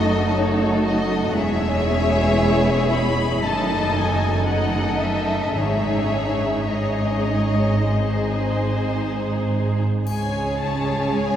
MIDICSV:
0, 0, Header, 1, 9, 480
1, 0, Start_track
1, 0, Key_signature, 4, "minor"
1, 0, Tempo, 1025641
1, 649, Time_signature, 4, 2, 24, 8
1, 2099, Tempo, 1086957
1, 2579, Tempo, 1123596
1, 4499, Tempo, 1077199
1, 5077, End_track
2, 0, Start_track
2, 0, Title_t, "Violin section"
2, 0, Program_c, 0, 48
2, 0, Note_on_c, 0, 75, 60
2, 172, Note_on_c, 0, 73, 50
2, 175, Note_off_c, 0, 75, 0
2, 401, Note_on_c, 0, 75, 51
2, 410, Note_off_c, 0, 73, 0
2, 608, Note_off_c, 0, 75, 0
2, 617, Note_on_c, 0, 78, 44
2, 643, Note_on_c, 0, 76, 63
2, 649, Note_off_c, 0, 78, 0
2, 1366, Note_on_c, 0, 83, 59
2, 1368, Note_off_c, 0, 76, 0
2, 1610, Note_off_c, 0, 83, 0
2, 1616, Note_on_c, 0, 81, 49
2, 1855, Note_off_c, 0, 81, 0
2, 1862, Note_on_c, 0, 80, 45
2, 2094, Note_on_c, 0, 78, 43
2, 2101, Note_off_c, 0, 80, 0
2, 2323, Note_on_c, 0, 76, 39
2, 2326, Note_off_c, 0, 78, 0
2, 2567, Note_off_c, 0, 76, 0
2, 2573, Note_on_c, 0, 76, 44
2, 3050, Note_off_c, 0, 76, 0
2, 3059, Note_on_c, 0, 75, 38
2, 4023, Note_off_c, 0, 75, 0
2, 4499, Note_on_c, 0, 80, 51
2, 4724, Note_off_c, 0, 80, 0
2, 4746, Note_on_c, 0, 81, 45
2, 4978, Note_on_c, 0, 80, 51
2, 4984, Note_off_c, 0, 81, 0
2, 5077, Note_off_c, 0, 80, 0
2, 5077, End_track
3, 0, Start_track
3, 0, Title_t, "Violin section"
3, 0, Program_c, 1, 48
3, 0, Note_on_c, 1, 66, 44
3, 0, Note_on_c, 1, 69, 43
3, 631, Note_off_c, 1, 66, 0
3, 631, Note_off_c, 1, 69, 0
3, 650, Note_on_c, 1, 73, 49
3, 651, Note_on_c, 1, 68, 47
3, 1594, Note_off_c, 1, 73, 0
3, 1595, Note_off_c, 1, 68, 0
3, 1612, Note_on_c, 1, 69, 40
3, 1615, Note_on_c, 1, 75, 38
3, 2090, Note_off_c, 1, 75, 0
3, 2091, Note_off_c, 1, 69, 0
3, 2096, Note_on_c, 1, 75, 36
3, 2097, Note_on_c, 1, 69, 39
3, 2567, Note_off_c, 1, 75, 0
3, 2568, Note_off_c, 1, 69, 0
3, 2575, Note_on_c, 1, 68, 34
3, 2580, Note_on_c, 1, 73, 33
3, 3048, Note_off_c, 1, 68, 0
3, 3048, Note_off_c, 1, 73, 0
3, 3053, Note_on_c, 1, 68, 28
3, 3053, Note_on_c, 1, 73, 31
3, 3534, Note_off_c, 1, 68, 0
3, 3534, Note_off_c, 1, 73, 0
3, 3550, Note_on_c, 1, 72, 31
3, 3554, Note_on_c, 1, 68, 33
3, 4396, Note_off_c, 1, 68, 0
3, 4411, Note_off_c, 1, 72, 0
3, 4505, Note_on_c, 1, 68, 38
3, 4508, Note_on_c, 1, 73, 36
3, 5077, Note_off_c, 1, 68, 0
3, 5077, Note_off_c, 1, 73, 0
3, 5077, End_track
4, 0, Start_track
4, 0, Title_t, "Viola section"
4, 0, Program_c, 2, 48
4, 0, Note_on_c, 2, 57, 49
4, 0, Note_on_c, 2, 63, 48
4, 632, Note_off_c, 2, 57, 0
4, 633, Note_off_c, 2, 63, 0
4, 647, Note_on_c, 2, 56, 49
4, 648, Note_on_c, 2, 64, 49
4, 1593, Note_off_c, 2, 56, 0
4, 1593, Note_off_c, 2, 64, 0
4, 1606, Note_on_c, 2, 63, 37
4, 1608, Note_on_c, 2, 51, 37
4, 2088, Note_off_c, 2, 51, 0
4, 2091, Note_off_c, 2, 63, 0
4, 2093, Note_on_c, 2, 51, 39
4, 2097, Note_on_c, 2, 63, 38
4, 2566, Note_off_c, 2, 51, 0
4, 2568, Note_off_c, 2, 63, 0
4, 2573, Note_on_c, 2, 63, 34
4, 2575, Note_on_c, 2, 56, 33
4, 3050, Note_off_c, 2, 63, 0
4, 3051, Note_off_c, 2, 56, 0
4, 3063, Note_on_c, 2, 63, 31
4, 3064, Note_on_c, 2, 56, 31
4, 3539, Note_off_c, 2, 63, 0
4, 3540, Note_off_c, 2, 56, 0
4, 3551, Note_on_c, 2, 56, 31
4, 3551, Note_on_c, 2, 63, 30
4, 4394, Note_off_c, 2, 56, 0
4, 4395, Note_off_c, 2, 63, 0
4, 4498, Note_on_c, 2, 56, 36
4, 4499, Note_on_c, 2, 61, 36
4, 5077, Note_off_c, 2, 56, 0
4, 5077, Note_off_c, 2, 61, 0
4, 5077, End_track
5, 0, Start_track
5, 0, Title_t, "French horn section"
5, 0, Program_c, 3, 60
5, 0, Note_on_c, 3, 57, 43
5, 0, Note_on_c, 3, 63, 42
5, 562, Note_off_c, 3, 57, 0
5, 562, Note_off_c, 3, 63, 0
5, 642, Note_on_c, 3, 56, 44
5, 644, Note_on_c, 3, 61, 45
5, 1590, Note_off_c, 3, 56, 0
5, 1608, Note_on_c, 3, 57, 35
5, 1610, Note_off_c, 3, 61, 0
5, 1613, Note_on_c, 3, 63, 33
5, 2085, Note_off_c, 3, 57, 0
5, 2088, Note_off_c, 3, 63, 0
5, 2090, Note_on_c, 3, 57, 32
5, 2093, Note_on_c, 3, 63, 30
5, 2565, Note_off_c, 3, 57, 0
5, 2565, Note_on_c, 3, 61, 32
5, 2566, Note_off_c, 3, 63, 0
5, 2566, Note_on_c, 3, 56, 31
5, 3056, Note_off_c, 3, 56, 0
5, 3056, Note_off_c, 3, 61, 0
5, 3061, Note_on_c, 3, 56, 31
5, 3061, Note_on_c, 3, 61, 32
5, 3538, Note_off_c, 3, 56, 0
5, 3538, Note_off_c, 3, 61, 0
5, 3543, Note_on_c, 3, 60, 29
5, 3552, Note_on_c, 3, 56, 27
5, 4338, Note_off_c, 3, 60, 0
5, 4342, Note_off_c, 3, 56, 0
5, 4485, Note_on_c, 3, 56, 35
5, 4488, Note_on_c, 3, 61, 34
5, 5077, Note_off_c, 3, 56, 0
5, 5077, Note_off_c, 3, 61, 0
5, 5077, End_track
6, 0, Start_track
6, 0, Title_t, "Timpani"
6, 0, Program_c, 4, 47
6, 2570, Note_on_c, 4, 44, 40
6, 3284, Note_off_c, 4, 44, 0
6, 5077, End_track
7, 0, Start_track
7, 0, Title_t, "Cello section"
7, 0, Program_c, 5, 48
7, 0, Note_on_c, 5, 42, 41
7, 645, Note_on_c, 5, 40, 46
7, 648, Note_off_c, 5, 42, 0
7, 1592, Note_off_c, 5, 40, 0
7, 1611, Note_on_c, 5, 42, 40
7, 2574, Note_on_c, 5, 44, 32
7, 2577, Note_off_c, 5, 42, 0
7, 4392, Note_off_c, 5, 44, 0
7, 4499, Note_on_c, 5, 49, 40
7, 5077, Note_off_c, 5, 49, 0
7, 5077, End_track
8, 0, Start_track
8, 0, Title_t, "Double bass section"
8, 0, Program_c, 6, 48
8, 0, Note_on_c, 6, 30, 40
8, 645, Note_off_c, 6, 30, 0
8, 645, Note_on_c, 6, 28, 46
8, 1592, Note_off_c, 6, 28, 0
8, 1605, Note_on_c, 6, 30, 41
8, 2572, Note_on_c, 6, 32, 36
8, 2574, Note_off_c, 6, 30, 0
8, 4390, Note_off_c, 6, 32, 0
8, 4498, Note_on_c, 6, 37, 38
8, 5077, Note_off_c, 6, 37, 0
8, 5077, End_track
9, 0, Start_track
9, 0, Title_t, "Drums"
9, 4499, Note_on_c, 9, 81, 27
9, 4544, Note_off_c, 9, 81, 0
9, 5077, End_track
0, 0, End_of_file